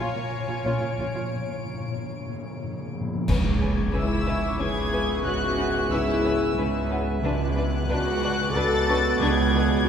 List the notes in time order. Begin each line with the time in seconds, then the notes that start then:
Already playing: C#5 F5 G#5
0.00 A#2 F4 D7
0.09 A#2
0.14 A#2 F4
0.24 A#2
0.31 A#2
0.39 A#2
0.46 A#2 F4
0.54 A#2
0.61 A#1 A#2 C#4 F4
0.65 A#2 C#5
0.76 A#2
0.81 A#2 F4
0.91 A#2
0.98 A#1 A#2 F4
1.06 A#2
1.14 A#2 F4
1.21 A#2
1.28 A#2
1.36 A#2
1.43 A#2
1.51 A#2
1.58 A#2
1.66 A#2
1.73 A#2
1.80 A#2
1.88 A#2
1.96 A#2
2.03 A#2
2.11 A#2
2.19 A#2
2.26 A#2
2.34 A#2
2.41 A#2
2.49 A#2
2.57 A#2
2.64 A#2
2.71 A#2
2.78 A#2
2.86 A#2
2.94 A#2
3.01 A#2
3.08 A#2
3.15 A#2
3.27 C#2 G#2 B3 C#4 G#4 B4 E5 G#5 C#6 D6 G#6, concert bass drum, crash, impact
3.61 C#4 B4
3.94 C#2 C#4 E4 B4 E6
4.26 C#4 B4 E5
4.59 C#2 C#4 G#4 B4 G#6
4.93 C#4 B4
5.25 C#2 C#4 F#4 B4 F#6
5.58 C#4 B4
5.92 C#2 C#4 E4 B4 E6
6.25 C#4 B4
6.58 C#2 C#4 B4
6.91 C#4 B4 F#5
7.23 C#2 B2 C#3 B3 D4 F#4 B4 F#5 D6 F#6
7.57 D4 B4
7.90 C#2 D4 F#4 B4 F#6
8.23 D4 B4
8.55 C#2 D4 A4 B4 A6
8.88 C#4 D4 B4 C#6
9.21 C#2 D4 G#4 B4 G#6
9.43 G6
9.55 D4 B4